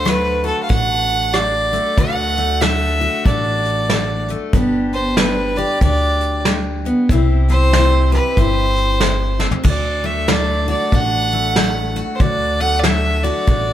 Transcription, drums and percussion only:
0.06 cross-stick loud
0.06 closed hi-hat medium
0.46 closed hi-hat medium
0.70 kick loud
0.70 closed hi-hat medium
1.10 closed hi-hat medium
1.34 cross-stick loud
1.34 closed hi-hat medium
1.73 closed hi-hat medium
1.97 kick loud
1.97 closed hi-hat medium
2.37 closed hi-hat medium
2.62 snare loud
2.62 closed hi-hat medium
3.01 closed hi-hat soft
3.26 kick medium
3.26 closed hi-hat medium
3.65 closed hi-hat soft
3.89 snare loud
3.89 closed hi-hat medium
4.28 closed hi-hat medium
4.53 kick loud
4.53 closed hi-hat medium
4.93 closed hi-hat medium
5.17 snare loud
5.17 closed hi-hat medium
5.56 closed hi-hat medium
5.81 kick medium
5.81 closed hi-hat medium
6.20 closed hi-hat medium
6.45 snare loud
6.45 closed hi-hat medium
6.85 closed hi-hat medium
7.09 kick loud
7.09 closed hi-hat medium
7.48 closed hi-hat medium
7.73 snare loud
7.73 closed hi-hat medium
8.13 closed hi-hat medium
8.37 kick medium
8.37 closed hi-hat medium
8.76 closed hi-hat medium
9.00 snare loud
9.00 closed hi-hat medium
9.40 snare medium
9.51 floor tom medium
9.64 kick medium
9.64 crash medium
10.28 snare loud
10.28 closed hi-hat medium
10.68 closed hi-hat medium
10.92 kick medium
10.92 closed hi-hat medium
11.31 closed hi-hat medium
11.56 snare loud
11.56 closed hi-hat medium
11.96 closed hi-hat medium
12.20 kick loud
12.20 closed hi-hat medium
12.84 snare loud
12.84 closed hi-hat medium
13.23 closed hi-hat soft
13.47 kick medium
13.47 closed hi-hat medium

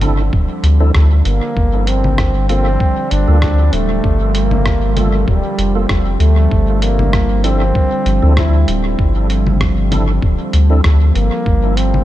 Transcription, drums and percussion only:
0.01 closed hi-hat medium
0.01 low conga medium
0.33 kick loud
0.64 closed hi-hat soft
0.95 kick loud
0.95 cross-stick medium
1.25 closed hi-hat soft
1.57 kick loud
1.87 closed hi-hat medium
2.04 low conga medium
2.18 kick loud
2.18 cross-stick medium
2.49 closed hi-hat medium
2.80 kick loud
3.11 closed hi-hat medium
3.42 kick loud
3.42 cross-stick medium
3.73 closed hi-hat medium
4.04 kick medium
4.35 closed hi-hat medium
4.51 low conga medium
4.66 kick loud
4.66 cross-stick medium
4.97 closed hi-hat medium
4.97 low conga medium
5.28 kick loud
5.59 closed hi-hat medium
5.89 kick loud
5.89 cross-stick medium
6.20 closed hi-hat medium
6.51 kick loud
6.82 closed hi-hat medium
6.99 low conga medium
7.13 kick loud
7.13 cross-stick medium
7.44 closed hi-hat medium
7.75 kick loud
8.06 closed hi-hat medium
8.37 kick loud
8.37 cross-stick medium
8.68 closed hi-hat medium
8.99 kick loud
9.30 closed hi-hat medium
9.47 low conga medium
9.61 kick loud
9.61 cross-stick medium
9.92 closed hi-hat medium
9.92 low conga medium
10.22 kick loud
10.53 closed hi-hat medium
10.84 kick loud
10.84 cross-stick medium
11.15 closed hi-hat medium
11.46 kick loud
11.77 closed hi-hat medium
11.94 low conga medium

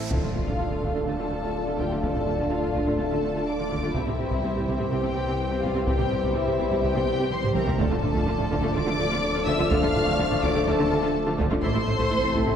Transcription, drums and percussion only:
0.11 taiko medium
0.47 taiko medium
0.83 taiko medium
1.79 taiko medium
2.03 taiko medium
2.15 taiko low-mid soft
2.27 taiko low-mid medium
2.39 taiko medium
2.63 taiko low-mid soft
2.75 taiko medium
2.87 taiko low-mid soft
3.71 taiko medium
3.95 taiko medium
4.07 taiko low-mid soft
4.19 taiko low-mid medium
4.31 taiko medium
4.55 taiko low-mid soft
4.67 taiko medium
4.79 taiko low-mid soft
5.63 taiko medium
5.87 taiko loud
5.99 taiko low-mid soft
6.11 taiko low-mid medium
6.23 taiko medium
6.47 taiko low-mid soft
6.59 taiko medium
6.71 taiko low-mid soft
7.31 taiko mid medium
7.43 taiko low-mid medium
7.55 taiko mid loud
7.67 taiko low loud
7.79 taiko loud
7.91 taiko low-mid medium
8.03 taiko low-mid medium
8.15 taiko medium
8.39 taiko low-mid medium
8.51 taiko medium
8.63 taiko low-mid soft
9.47 taiko medium
9.71 taiko loud
9.83 taiko low-mid medium
9.95 taiko low-mid medium
10.07 taiko medium
10.31 taiko low-mid medium
10.43 taiko medium
10.55 taiko low-mid soft
11.39 taiko medium
11.63 taiko medium
11.75 taiko low-mid medium
11.87 taiko low-mid medium
11.99 taiko medium
12.23 taiko low-mid medium
12.35 taiko medium
12.46 taiko low-mid medium

